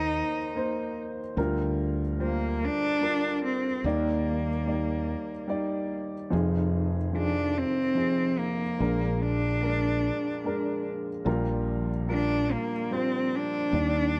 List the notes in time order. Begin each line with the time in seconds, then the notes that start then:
Already playing: D#2 D#3 A#3 D#4 C5
0.54 A#3 D#4 C5
1.36 D2 D3 G3 F4 A#4
2.19 G3 A#3 F4 C5
2.65 D4
3.01 G3 F4 A#4
3.45 C4
3.84 D#2 D#3 G3 A#3 D#4 D5
4.66 G3 D#4 D5
5.47 G3 D#4 D5
6.30 F1 F2 F3 D#4 G#4
7.13 D#3 F3 G#4
7.18 D4
7.58 C4
7.95 F3 D#4 G#4
8.39 A#3
8.79 A#1 A#2 G#3 D4 A#4
9.22 D4
9.62 G#3 D4 A#4
10.44 G#3 D4 A#4
11.25 A#1 A#2 G3 F4 A#4
12.07 G3 D4 F4 A#4
12.52 A#3
12.91 G3 C4 F4 C5
13.36 D4
13.72 D#2 D#3 G3 D4 D5